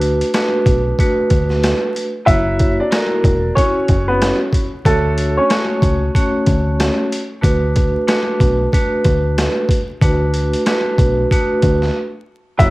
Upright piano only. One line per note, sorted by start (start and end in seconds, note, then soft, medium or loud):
2.26 2.76 E4 medium
2.26 2.75 E5 loud
2.80 3.53 D4 medium
2.80 3.53 D5 medium
3.55 4.05 C#4 medium
3.55 4.04 C#5 medium
4.08 4.37 B3 medium
4.08 4.37 B4 medium
4.86 5.35 A3 medium
4.86 5.34 A4 loud
5.37 6.95 C#4 medium
5.37 6.94 C#5 medium
12.59 12.70 E4 medium
12.59 12.70 E5 loud